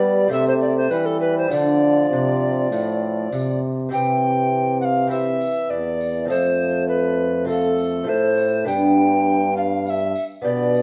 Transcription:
Already playing: G3 B3 G4 B4 D5
0.28 C3 A3 C4 G4, tambourine
0.32 E5
0.48 C5
0.61 D5
0.77 C5
0.91 E3 G3 B4, tambourine
1.06 A4
1.21 B4
1.38 C5
1.48 D3 F3 A3 D4 F4, tambourine
1.53 D5
2.11 C3
2.71 A2, tambourine
3.32 C3, tambourine
3.89 C3 E3 C4 E4 G4, tambourine
3.93 G5
4.81 F#5
4.85 F5
5.07 C4 E4 G4 E5, tambourine
5.11 E3
5.41 tambourine
5.70 E2 D5
6.01 tambourine
6.25 F2 C4 F4 A4
6.30 F2 A3 C5, tambourine
6.89 B4
7.45 C4 F4 A4
7.49 A3, tambourine
7.78 tambourine
8.04 A2 C4 F4 A4
8.08 A2 A3 C5
8.38 tambourine
8.64 G2 B3 D4 G4 G5, tambourine
8.68 G2
9.57 F5
9.86 F5, tambourine
9.90 E5
10.15 tambourine
10.42 B2 B3 D4 G4 D5
10.75 tambourine

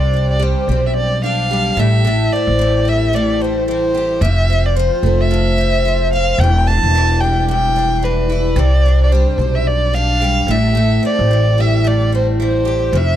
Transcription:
Already playing: C2 C3 G3 D5
0.14 D4
0.31 D5
0.40 G3 C5
0.68 B1 C4
0.86 E5
0.96 D5
1.24 D4 F5
1.51 G3
1.77 A1 A2 E5
2.05 A2
2.32 C4 D5
2.47 A1
2.59 E3
2.85 G3 E5
3.13 A2 D5
3.41 C4 C5
3.68 E3 C5
3.95 G4
4.21 F1 F2 E5
4.50 C4
4.66 D5
4.76 F3 C5
5.03 F1 A3
5.21 E5
5.31 F2
5.58 C4
5.85 F3
6.13 F4 F5
6.38 E1 E2 G5
6.67 D4 A5
6.83 E1
6.95 E3
7.21 G3 G5
7.49 E2 G5
7.76 D4
8.03 E3 B4
8.30 E4
8.56 C2 C3 D5
8.86 D4
9.04 D5
9.12 G3 C5
9.38 B1 C4
9.55 E5
9.67 D5
9.94 D4 F5
10.22 G3
10.47 A1 A2 E5
10.75 A2
11.03 C4 D5
11.19 A1
11.31 E3
11.58 G3 E5
11.84 A2 D5
12.12 C4 C5
12.40 E3 C5
12.65 G4
12.92 F1 F2
12.97 E5

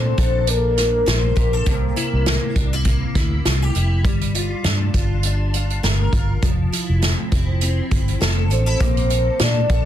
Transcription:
Already playing: A#2 A#3 D4 A4 C5
0.18 A#1 A4, kick, closed hi-hat
0.47 D4 A#4, closed hi-hat
0.77 snare, closed hi-hat
1.06 A#1 C5, snare, closed hi-hat
1.35 A#1 G4 A#4, kick, closed hi-hat
1.53 A4
1.66 C2 C3, kick, closed hi-hat
1.96 E4, closed hi-hat
2.13 C2
2.26 A#3, snare, closed hi-hat
2.56 C2 D4, kick, closed hi-hat
2.73 E4
2.85 A#3, kick, closed hi-hat
3.15 D2 E4, kick, snare, closed hi-hat
3.45 C2 F4, snare, closed hi-hat
3.62 G4
3.75 F1 E4, closed hi-hat
4.05 G1 G3, kick, closed hi-hat
4.21 closed hi-hat
4.35 F4, closed hi-hat
4.64 G2 D4, snare, closed hi-hat
4.94 G1 F4, kick, closed hi-hat
5.23 D4, closed hi-hat
5.54 F4, closed hi-hat
5.70 closed hi-hat
5.83 G1 A#4, snare, closed hi-hat
6.13 G1 F4, kick, closed hi-hat
6.42 F1 F3, kick, closed hi-hat
6.72 E4, closed hi-hat
6.89 F1
7.02 C4, snare, closed hi-hat
7.32 F1 E4, kick, closed hi-hat
7.61 C4, closed hi-hat
7.91 G1 E4, kick, closed hi-hat
8.08 closed hi-hat
8.21 F1 A4, snare, closed hi-hat
8.50 A1 D4 C5, closed hi-hat
8.66 E4
8.80 A#1 A#3, kick, closed hi-hat
8.97 closed hi-hat
9.10 A4, closed hi-hat
9.39 A#2 D4 D5, snare, closed hi-hat
9.69 A#1 A4, kick, closed hi-hat

